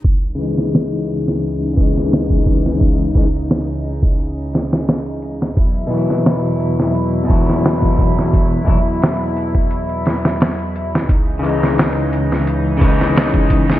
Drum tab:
HH |x-x-o-x-x-x-x-x-|x-x-x-x-xxx-xxx-|x-x-o-x-x-x-x-x-|x-x-x-x-xxx-xxx-|
SD |---oo--o---oo--o|----o-----ooo--o|---oo--o---oo--o|----o-----ooo--o|
BD |o---------o--oo-|o-o----o--------|o---------o--oo-|o-o----o--------|

HH |x-x-o-x-x-x-x-x-|
SD |---oo--o---oo--o|
BD |o---------o--oo-|